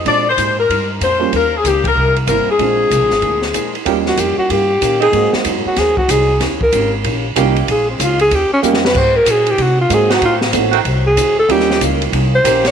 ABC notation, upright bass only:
X:1
M:4/4
L:1/8
Q:"Swing" 1/4=189
K:Ebmix
V:1 name="Upright bass" clef=bass
B,,2 A,,2 G,,2 F,,2 | E,,2 D,,2 C,,2 G,,, z | B,,,2 (3C,, B,,, A,,, =D,,2 z2 | E,,2 F,, z G,,2 B,,2 |
A,, z _G,, z E,,2 C,,2 | E,,2 A,,,2 B,,,2 C,,2 | B,,,2 D,,2 E,, z F,,2 | A,,2 B,,2 C,2 A,,2 |
=A,,2 =A,,,2 C,,2 =D,,2 | E,,2 D,,2 C,,2 B,,,2 |]